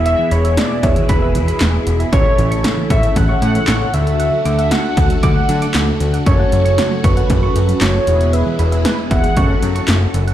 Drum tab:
HH |x-xxx-xxx-xxx-xx|x-xxx-xxx-xxx-xx|x-xxx-xxx-xxx-xx|x-xxx-xxx-xxx-xx|
CP |------------x---|------------x---|------------x---|------------x---|
SD |----o-------o---|----o-------o---|----o-------o---|----o-------o---|
BD |------o-o-------|o-----o-o-------|------o-o-------|o-----o-o-------|

HH |x-xxx-xxx-xxx-xx|
CP |------------x---|
SD |----o-------o---|
BD |------o-o-------|